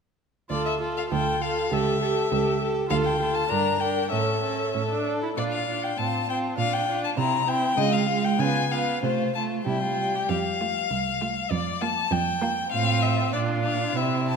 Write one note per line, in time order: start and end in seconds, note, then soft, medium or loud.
0.50 1.02 D2 soft
0.50 0.80 F4 soft
0.50 0.81 A4 soft
0.50 0.64 D5 soft
0.65 0.73 E5 soft
0.80 1.10 F4 soft
0.80 1.11 A4 soft
0.97 1.03 F5 soft
1.10 1.62 D2 soft
1.10 1.41 F4 soft
1.10 1.41 A4 soft
1.10 1.43 G5 medium
1.41 1.71 F4 soft
1.41 1.72 A4 soft
1.41 1.74 F5 soft
1.72 2.22 C#2 medium
1.72 2.01 G4 soft
1.72 2.01 A4 soft
1.72 2.62 E5 soft
2.02 2.30 G4 soft
2.02 2.31 A4 soft
2.31 2.82 C#2 medium
2.31 2.60 G4 soft
2.31 2.61 A4 soft
2.61 2.89 G4 soft
2.61 2.90 A4 soft
2.90 3.41 D2 medium
2.90 3.19 F4 soft
2.90 3.20 A4 soft
2.90 2.96 F5 medium
3.05 3.37 G5 medium
3.20 3.50 F4 soft
3.20 3.50 A4 soft
3.35 3.51 A5 medium
3.50 4.02 G2 soft
3.50 3.80 D4 soft
3.50 3.81 A#4 soft
3.50 3.81 A#5 medium
3.80 4.11 D4 soft
3.80 4.12 A#4 soft
3.80 4.11 G5 soft
4.11 4.65 A2 soft
4.11 4.42 C#4 soft
4.11 4.43 A4 soft
4.11 5.04 E5 soft
4.43 4.74 C#4 soft
4.43 4.74 A4 soft
4.74 5.27 A2 soft
4.74 4.81 C#4 soft
4.74 5.06 A4 soft
4.90 5.22 D4 soft
5.07 5.37 A4 soft
5.23 5.29 E4 soft
5.37 5.89 A#2 soft
5.37 5.68 D4 soft
5.37 5.69 F4 soft
5.37 5.44 D5 medium
5.52 5.85 F5 soft
5.69 5.99 D4 soft
5.69 5.99 F4 soft
5.84 5.99 G5 soft
5.98 6.49 A2 soft
5.98 6.29 C4 soft
5.98 6.29 F4 soft
5.98 6.29 A5 medium
6.30 6.58 C4 soft
6.30 6.58 F4 soft
6.30 6.38 G5 soft
6.58 7.08 A#2 soft
6.58 6.88 D4 soft
6.58 6.87 F4 soft
6.58 6.75 F5 medium
6.73 7.03 G5 soft
6.88 7.18 D4 soft
6.88 7.17 F4 soft
7.04 7.10 A5 medium
7.17 7.68 C3 soft
7.17 7.48 C4 soft
7.17 7.47 E4 soft
7.17 7.50 A#5 medium
7.48 7.78 C4 soft
7.48 7.78 E4 soft
7.48 7.79 G5 medium
7.77 8.29 C#3 medium
7.77 8.08 G#3 soft
7.77 8.08 F4 soft
7.77 7.94 D#5 medium
7.93 8.26 F5 medium
8.08 8.39 G#3 soft
8.08 8.39 F4 soft
8.25 8.41 G5 medium
8.39 8.93 C#3 medium
8.39 8.71 B3 soft
8.39 8.71 F4 soft
8.39 8.73 G#5 medium
8.71 9.03 B3 soft
8.71 9.03 F4 soft
8.71 9.02 F5 medium
9.03 9.56 C3 soft
9.03 9.34 A3 soft
9.03 9.35 F4 soft
9.03 9.34 C5 soft
9.35 9.66 A3 soft
9.35 9.67 F4 soft
9.35 9.43 A5 soft
9.66 10.19 C3 soft
9.66 9.98 G3 soft
9.66 9.82 E4 soft
9.66 10.30 G5 soft
9.83 10.17 F4 soft
9.98 10.29 G3 soft
10.16 10.31 G4 soft
10.29 10.78 F2 soft
10.29 11.52 F5 medium
10.61 10.84 A3 soft
10.61 10.84 F4 soft
10.91 11.39 C2 soft
11.21 11.44 A3 soft
11.21 11.44 F4 soft
11.51 11.99 F2 soft
11.51 11.83 D5 medium
11.81 12.04 A#3 medium
11.81 12.04 F4 soft
11.81 12.13 A5 medium
12.11 12.59 F2 medium
12.11 12.71 G5 medium
12.41 12.64 A#3 medium
12.41 12.64 F4 medium
12.71 13.29 A2 soft
12.71 13.35 C4 soft
12.71 13.29 F4 soft
12.71 13.04 F5 medium
13.02 13.32 E5 medium
13.33 13.95 A#2 soft
13.33 13.98 D4 soft
13.33 13.97 F4 soft
13.33 13.41 D5 medium
13.65 13.98 F5 medium
13.95 14.36 C3 soft
13.95 14.36 C4 soft
13.95 14.36 E4 soft
13.95 14.28 E5 soft
14.28 14.36 A5 soft